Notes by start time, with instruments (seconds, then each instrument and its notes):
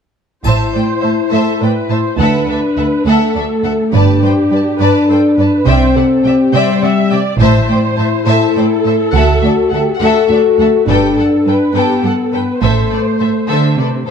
0.44 double bass section A1, cello section A2, french horn section E4, violin section C5 E5 A5, viola section C5, triangle
0.73 cello section A2, violin section C5 D5 G5
1.01 cello section A2, violin section C5 E5 A5
1.31 cello section A2, viola section A4, violin section C5 E5 A5
1.61 cello section A2, viola section B4, violin section C5 D5 G5
1.89 cello section A2, violin section C5 E5 A5, viola section C5
2.17 double bass section D2, cello section D2, french horn section D4, violin section A4 E5 F#5, viola section B4
2.47 cello section D2, violin section A4 D5 E5
2.77 cello section D2, violin section A4 E5 F#5
3.05 cello section D2, french horn section A3, violin section A4 E5 F#5, viola section A4
3.34 cello section D2, violin section A4 D5 E5
3.64 cello section D2, violin section A4 E5 F#5
3.93 double bass section G1, cello section G2, french horn section D4, viola section G4, violin section B4 D5 A5
4.22 cello section G2, violin section B4 C5 G5
4.50 cello section G2, violin section B4 D5
4.55 violin section A5
4.79 cello section G2, viola section B4, violin section B4 D5 A5
5.08 cello section G2, viola section A4, violin section B4 C5
5.12 violin section G5
5.37 cello section G2, viola section B4, violin section B4 D5 A5
5.65 double bass section C2, cello section C3, french horn section C4, viola section C5, violin section D5 E5 G5
5.95 cello section C3, viola section A4, violin section D5 F#5
6.23 cello section C3, viola section G4, violin section D5 E5 G5
6.52 cello section C3, french horn section G3, viola section C5, violin section D5 E5 G5
6.82 cello section C3, violin section D5 F#5, viola section E5
7.10 cello section C3, viola section D5, violin section D5 E5 G5
7.39 double bass section A1, cello section A2, timpani A2, french horn section E4, viola section C5, violin section C5 E5 A5
7.69 cello section A2, violin section C5 D5 G5
7.96 cello section A2, violin section C5 E5 A5
8.27 cello section A2, viola section A4, violin section C5 E5 A5
8.56 cello section A2, violin section C5 D5 G5
8.84 cello section A2, violin section C5 E5 A5
9.13 cello section D2, double bass section D2, french horn section F#4, violin section A4 E5 F#5
9.41 cello section D2, violin section A4 D5 E5
9.71 cello section D2, french horn section G4, violin section A4 E5 F#5
9.98 cello section D2, viola section F#4, french horn section A4, violin section F#5
10.03 violin section A4 E5
10.28 cello section D2, violin section D5 E5
10.33 violin section A4
10.59 cello section D2, violin section A4 E5 F#5
10.86 double bass section G1, cello section G2, french horn section D4, viola section G4, violin section A4 B4 G5
11.16 cello section G2, violin section A4 F#5, viola section A4
11.46 cello section G2, violin section A4 B4 G5, viola section B4
11.74 cello section G2, french horn section B3, viola section G4, violin section A4 B4 G5
12.03 cello section G2, violin section A4 F#5, viola section A4
12.33 cello section G2, violin section A4 B4 G5, viola section B4
12.61 double bass section A1, cello section A2, french horn section A3, violin section A4 C5 E5, viola section C5
12.91 cello section A2, violin section A4 B4 D5
13.19 cello section A2, violin section A4 C5 E5
13.48 cello section D3, violin section A4 C5 E5
13.78 cello section C3, violin section A4 B4 D5
14.07 violin section A4 E5